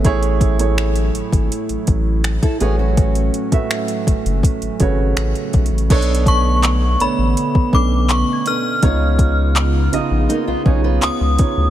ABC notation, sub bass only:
X:1
M:4/4
L:1/16
Q:1/4=82
K:A
V:1 name="Sub bass" clef=bass
A,,,6 G,,, G,,, z A,,, A,,,3 z A,,,2- | A,,,2 z4 F,,, F,,, z G,,, G,,,2 A,,, z B,,, A,,, | B,,,6 A,,, A,,, z B,,, B,,,3 z3 | C,,6 ^A,,, A,,, z B,,, B,,,2 C,, C,, z D,, |]